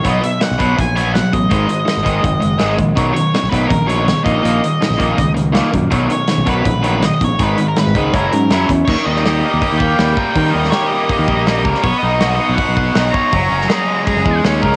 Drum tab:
CC |----------------|----------------|----------------|----------------|
HH |x-x-x-x-x-x-x-x-|x-x-x-x-x-x-x-x-|x-x-x-x-x-x-x-x-|x-x-x-x-x-x-x-x-|
SD |----oo------o---|----oo------o---|----oo------o---|----oo------o---|
BD |o-----o-o-----o-|o-----o-o-----o-|o-----o-o-----o-|------o-o-----o-|

CC |----------------|----------------|x---------------|----------------|
HH |x-x-x-x-x-x-x-x-|x-x-x-x-x-x-x-x-|----o---o---o---|o---o---o---o---|
SD |----o-------o---|----oo------o---|---oo-------o---|---oo-------o--o|
BD |o-----o-o-----o-|o-----o-o-----o-|o-------o-o---o-|o-------o-o---o-|

CC |----------------|----------------|
HH |o---o---o---o---|o---o---o---o---|
SD |----o-------o---|---oo-------o--o|
BD |o-------o-o---o-|o-------o-o---o-|